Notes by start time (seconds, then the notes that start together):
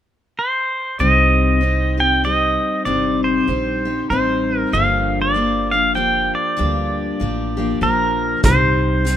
0.39 C5
0.99 C2 C3 G3 C4 D#4 G4 D#5
1.61 G3 C4 D#4 G4
1.98 C4 D#4 G4 G5
2.24 G3 C4 D#4 G4 D#5
2.85 G1 C3 G3 C4 D#4 G4 D5
3.24 C5
3.48 A#1 G3 C4 D#4 G4
3.85 C4 D#4 G4
4.10 A1 G3 C4 D#4 G4 C5
4.59 A#4
4.73 G1 G2 D3 F3 A#3 D4 G4 F5
5.22 D5
5.34 F3 A#3 D4 G4
5.71 F3 A#3 D4 G4 F5
5.95 F3 A#3 D4 G4 G5
6.35 D5
6.57 D2 G2 D3 F3 A#3 D4 G4
7.20 A1 F3 A#3 D4 G4
7.57 F3 A#3 D4 G4
7.81 A#1 F3 A#3 D4 G4 A#4
8.43 C2 C3 G3 C4 D#4 G4 C5, kick, closed hi-hat
9.04 G3 C4 D#4 G4, closed hi-hat